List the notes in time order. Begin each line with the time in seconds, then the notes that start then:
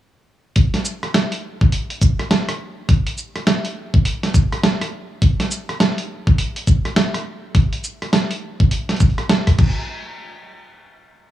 0.56 kick, closed hi-hat
0.74 snare, closed hi-hat
0.85 shaker
1.03 cross-stick, closed hi-hat
1.14 snare, closed hi-hat
1.32 closed hi-hat
1.61 kick
1.72 closed hi-hat
1.90 closed hi-hat
2.02 kick, shaker
2.19 cross-stick, closed hi-hat
2.31 snare, closed hi-hat
2.49 cross-stick, closed hi-hat
2.89 kick, closed hi-hat
3.07 closed hi-hat
3.18 shaker
3.36 cross-stick, closed hi-hat
3.47 snare, closed hi-hat
3.65 closed hi-hat
3.94 kick
4.05 closed hi-hat
4.23 snare, closed hi-hat
4.34 kick, shaker
4.52 cross-stick, closed hi-hat
4.63 snare, closed hi-hat
4.81 cross-stick, closed hi-hat
5.22 kick, closed hi-hat
5.40 snare, closed hi-hat
5.51 shaker
5.69 cross-stick, closed hi-hat
5.80 snare, closed hi-hat
5.98 closed hi-hat
6.27 kick
6.38 closed hi-hat
6.56 closed hi-hat
6.67 kick, shaker
6.85 cross-stick, closed hi-hat
6.96 snare, closed hi-hat
7.14 cross-stick, closed hi-hat
7.55 kick, closed hi-hat
7.73 closed hi-hat
7.84 shaker
8.02 cross-stick, closed hi-hat
8.13 snare, closed hi-hat
8.31 closed hi-hat
8.60 kick
8.71 closed hi-hat
8.89 snare, closed hi-hat
8.96 closed hi-hat
9.00 kick, closed hi-hat, shaker
9.06 closed hi-hat
9.10 closed hi-hat
9.18 cross-stick, closed hi-hat
9.29 snare, closed hi-hat
9.47 kick, cross-stick, closed hi-hat
9.58 kick, crash